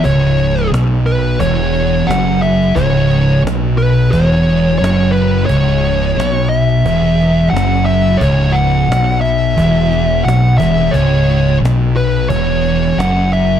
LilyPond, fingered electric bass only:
\new Staff \with { instrumentName = "Fingered electric bass" } { \clef bass \time 4/4 \key cis \minor \tempo 4 = 88 cis,,4 b,,4 e,,4 fis,,4 | cis,,4 b,,4 e,,4 fis,,4 | cis,,4 b,,4 e,,4 fis,,4 | cis,,4 b,,4 e,,4 b,,8 e,,8 |
cis,,4 b,,4 e,,4 fis,,4 | }